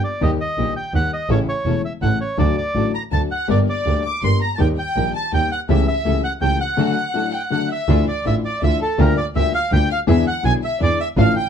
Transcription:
0.04 bandoneon D5
0.21 upright piano D#2 D#3 G3 A#3 G4, double bass D#2, string section A#3 D#4 G4, bandoneon D#5
0.41 bandoneon D#5
0.57 upright piano A#1 A#2 D#3 G3 A#3 G4, double bass A#1, string section A#3 D#4 G4
0.76 bandoneon G5
0.93 double bass D#2, upright piano D#2 D#3 G3 A#3 G4, string section A#3 D#4 G4, bandoneon F#5
1.13 bandoneon D#5
1.29 double bass A1, upright piano A1 A2 C#3 E3 A3 E4, string section C#4 E4 A4, bandoneon C#5
1.49 bandoneon C#5
1.66 double bass E1, upright piano E1 E2 C#3 E3 A3 E4, string section C#4 E4 A4
1.85 bandoneon E5
2.01 upright piano A1 A2 C#3 E3 A3 E4, double bass A1, string section C#4 E4 A4, bandoneon F#5
2.21 bandoneon C#5
2.37 upright piano D2 D3 F#3 A3 F#4, double bass D2, string section D4 F#4 A4, bandoneon D5
2.58 bandoneon D5
2.74 upright piano A1 A2 D3 F#3 A3 F#4, double bass A1, string section D4 F#4 A4
2.94 violin section A#5, bandoneon A#5
3.11 upright piano D2 D3 F#3 A3 F#4, double bass D2, string section D4 F#4 A4, violin section A5, bandoneon A5
3.31 bandoneon F#5, violin section F#5
3.48 upright piano G1 G2 D3 G3 A#3 G4, double bass G1, string section D4 G4 A#4, violin section D5, bandoneon D5
3.68 violin section D5, bandoneon D5
3.85 double bass D2, upright piano D2 D3 G3 A#3 G4, string section D4 G4 A#4
4.06 violin section D6, bandoneon D6
4.22 double bass G1, upright piano G1 G2 D3 G3 A#3 G4, string section D4 G4 A#4, violin section C6, bandoneon C6
4.42 bandoneon A#5, violin section A#5
4.55 upright piano D#2 D#3 G3 A#3 G4, violin section G5 A5, bandoneon A5
4.60 double bass D#2, string section D#4 G4 A#4, bandoneon G5
4.78 violin section G5, bandoneon G5
4.95 upright piano A#1 A#2 D#3 G3 A#3 G4, double bass A#1, string section D#4 G4 A#4
5.14 violin section A5, bandoneon A5
5.32 upright piano D#2 D#3 G3 A#3 G4, double bass D#2, string section D#4 G4 A#4, violin section G5, bandoneon G5
5.52 bandoneon F#5, violin section F#5
5.69 upright piano C#2 C#3 E3 A3 C#4 G4, double bass C#2, string section C#4 G4 A4, violin section E5, bandoneon E5
5.88 bandoneon E5, violin section E5
6.05 upright piano C#2 C#3 E3 A3 C#4 G4, double bass C#2, string section C#4 G4 A4
6.24 bandoneon F#5, violin section F#5
6.41 double bass C#2, upright piano C#2 C#3 E3 A3 C#4 G4, string section C#4 G4 A4, bandoneon G5, violin section G5
6.61 violin section F#5, bandoneon F#5
6.77 upright piano D2 D3 F#3 A3 D4 A4, string section D4 F#4 A4
7.14 upright piano A1 A2 F#3 A3 D4 A4, string section D4 F#4 A4
7.33 violin section G5, bandoneon G5
7.50 upright piano D2 D3 F#3 A3 D4 A4, string section D4 F#4 A4, bandoneon F#5, violin section F#5
7.71 violin section E5, bandoneon E5
7.88 upright piano D2 D3 E3 A3 D4 F4, double bass D2, string section D4 E4 F4
8.08 bandoneon D5, violin section D5
8.25 upright piano A1 A2 E3 A3 D4 F4, double bass A1, string section D4 E4 F4, violin section E5, bandoneon E5
8.45 bandoneon D5, violin section D5
8.62 upright piano D2 D3 E3 A3 D4 F4, double bass D2, string section D4 E4 F4, violin section E5, bandoneon E5
8.82 violin section A4, bandoneon A4
8.98 upright piano D2 D3 G3 A#3 F4, double bass D2, string section A#3 F4 G4, violin section A#4, bandoneon A#4
9.17 bandoneon D5, violin section D5
9.35 double bass D2, upright piano D2 D3 G3 A#3 F4, string section A#3 F4 G4, bandoneon E5, violin section E5
9.54 violin section F5, bandoneon F5
9.72 double bass D2, upright piano D2 D3 G3 A#3 F4, string section A#3 F4 G4, bandoneon G5, violin section G5
9.91 violin section F5, bandoneon F5
10.07 upright piano E2 D3 E3 G#3 B3 E4, double bass E2, string section D4 E4 G#4, violin section E5, bandoneon E5
10.28 bandoneon F#5, violin section F#5
10.43 upright piano B1 B2 D3 G#3 B3 E4, double bass B1, string section D4 E4 G#4, bandoneon G#5, violin section G#5
10.64 violin section E5, bandoneon E5
10.80 upright piano E2 D3 E3 G#3 B3 E4, double bass E2, string section D4 E4 G#4, violin section D5, bandoneon D5
11.00 violin section E5, bandoneon E5
11.16 double bass A1, upright piano A1 A2 D3 F3 A3 F4, string section D4 F4 A4, bandoneon F5, violin section F5
11.36 bandoneon G5, violin section G5

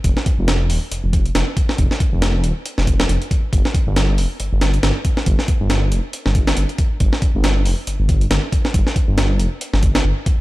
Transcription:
0.04 detuned saw bass F1, kick, closed hi-hat
0.17 snare
0.26 kick, closed hi-hat
0.39 detuned saw bass F1
0.48 snare, closed hi-hat
0.70 detuned saw bass D#1, open hi-hat
0.92 detuned saw bass F1, closed hi-hat
1.04 detuned saw bass F1
1.13 kick, closed hi-hat
1.26 closed hi-hat
1.35 detuned saw bass F1, snare, closed hi-hat
1.57 kick, closed hi-hat
1.69 snare
1.78 detuned saw bass F1, kick, closed hi-hat
1.91 snare
2.00 kick, closed hi-hat
2.13 detuned saw bass F1
2.22 snare, closed hi-hat
2.44 detuned saw bass D#1, closed hi-hat
2.66 closed hi-hat
2.78 detuned saw bass F1, snare
2.87 kick, closed hi-hat
3.00 snare
3.09 detuned saw bass F1, closed hi-hat
3.22 closed hi-hat
3.31 kick, closed hi-hat
3.53 detuned saw bass G1, kick, closed hi-hat
3.65 snare
3.74 kick, closed hi-hat
3.87 detuned saw bass G1
3.96 snare, closed hi-hat
4.18 detuned saw bass F1, open hi-hat
4.40 detuned saw bass G1, closed hi-hat
4.53 detuned saw bass G1
4.61 snare, closed hi-hat
4.74 closed hi-hat
4.83 detuned saw bass G1, snare, closed hi-hat
5.05 kick, closed hi-hat
5.17 snare
5.26 detuned saw bass G1, kick, closed hi-hat
5.39 snare
5.48 kick, closed hi-hat
5.61 detuned saw bass G1
5.70 snare, closed hi-hat
5.92 detuned saw bass F1, closed hi-hat
6.13 closed hi-hat
6.26 detuned saw bass G1, snare
6.35 kick, closed hi-hat
6.47 snare
6.57 detuned saw bass G1, closed hi-hat
6.69 closed hi-hat
6.78 kick, closed hi-hat
7.00 detuned saw bass G1, kick, closed hi-hat
7.13 snare
7.22 kick, closed hi-hat
7.35 detuned saw bass G1
7.44 snare, closed hi-hat
7.65 detuned saw bass F1, open hi-hat
7.87 detuned saw bass G1, closed hi-hat
8.00 detuned saw bass G1
8.09 kick, closed hi-hat
8.21 closed hi-hat
8.31 detuned saw bass G1, snare, closed hi-hat
8.52 kick, closed hi-hat
8.65 snare
8.74 detuned saw bass G1, kick, closed hi-hat
8.87 snare
8.96 kick, closed hi-hat
9.08 detuned saw bass G1
9.18 snare, closed hi-hat
9.39 detuned saw bass F1, closed hi-hat
9.61 closed hi-hat
9.73 detuned saw bass G1, snare
9.83 kick, closed hi-hat
9.95 snare
10.04 detuned saw bass G1
10.26 kick, closed hi-hat

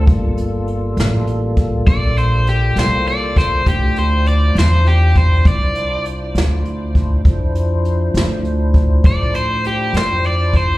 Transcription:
0.07 upright bass G1, tonewheel organ G3 A#3 F4 A4, kick, closed hi-hat
0.38 closed hi-hat
0.67 closed hi-hat
0.97 upright bass A1, snare, closed hi-hat
1.27 closed hi-hat
1.57 kick, closed hi-hat
1.87 upright bass A#1, overdriven electric guitar D5, kick, closed hi-hat
2.17 overdriven electric guitar C5, closed hi-hat
2.47 overdriven electric guitar G4, closed hi-hat
2.76 upright bass C2, overdriven electric guitar C5, snare, closed hi-hat
3.07 overdriven electric guitar D5, closed hi-hat
3.36 overdriven electric guitar C5, kick, snare, closed hi-hat
3.66 upright bass D2, tonewheel organ D4 E4 F4 C5, overdriven electric guitar G4, kick, closed hi-hat
3.96 overdriven electric guitar C5, closed hi-hat
4.26 overdriven electric guitar D5, closed hi-hat
4.55 upright bass E2, overdriven electric guitar C5, snare, closed hi-hat
4.86 overdriven electric guitar G4, closed hi-hat
5.15 overdriven electric guitar C5, kick, closed hi-hat
5.45 upright bass C2, overdriven electric guitar D5, kick, closed hi-hat
5.75 closed hi-hat
6.05 closed hi-hat
6.35 upright bass D2, snare, closed hi-hat
6.65 closed hi-hat
6.95 kick, closed hi-hat
7.25 upright bass F2, tonewheel organ F3 D4 E4 C5, kick, closed hi-hat
7.55 closed hi-hat
7.85 closed hi-hat
8.14 upright bass D2, snare, closed hi-hat
8.45 closed hi-hat
8.74 kick, closed hi-hat
9.04 upright bass A2, overdriven electric guitar D5, kick, closed hi-hat
9.34 overdriven electric guitar C5, closed hi-hat
9.64 overdriven electric guitar G4, closed hi-hat
9.93 upright bass F2, overdriven electric guitar C5, snare, closed hi-hat
10.24 overdriven electric guitar D5, closed hi-hat
10.54 overdriven electric guitar C5, kick, closed hi-hat

